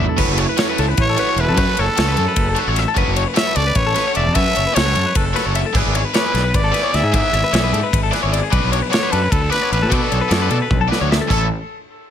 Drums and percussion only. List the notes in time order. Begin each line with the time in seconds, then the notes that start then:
0.18 kick, crash
0.38 ride
0.58 snare, ride
0.78 ride
0.97 kick, ride
1.18 ride
1.38 ride
1.57 kick, ride
1.77 ride
1.98 snare, ride
2.17 ride
2.36 kick, ride
2.56 ride
2.76 snare, ride
2.96 kick, ride
3.16 ride
3.36 snare, ride
3.56 ride
3.75 kick, ride
3.96 snare, ride
4.15 ride
4.35 kick, ride
4.56 ride
4.76 snare, ride
4.95 ride
5.15 kick, ride
5.36 snare, ride
5.55 ride
5.75 kick, crash
5.95 ride
6.14 snare, ride
6.35 snare, ride
6.54 kick, ride
6.74 snare, ride
6.94 snare, ride
7.14 kick, ride
7.34 ride
7.54 snare, ride
7.74 ride
7.93 kick, ride
8.13 snare, ride
8.34 ride
8.53 kick, ride
8.73 ride
8.93 snare, ride
9.13 ride
9.32 kick, ride
9.52 snare, ride
9.73 ride
9.92 kick, ride
10.12 ride
10.31 snare, ride
10.50 ride
10.71 kick, high tom
10.92 snare
11.12 snare
11.30 kick, crash